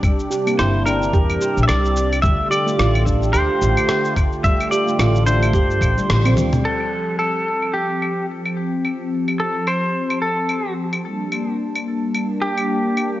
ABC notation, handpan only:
X:1
M:4/4
L:1/16
Q:"Swing 16ths" 1/4=109
K:F
V:1 name="Handpan"
G, z G B, E2 D2 G2 G4 z2 | G, z G A, F2 D2 G2 G4 z2 | G, z G A, F2 D2 G z2 G, z C G, z | z16 |
z16 | z16 |]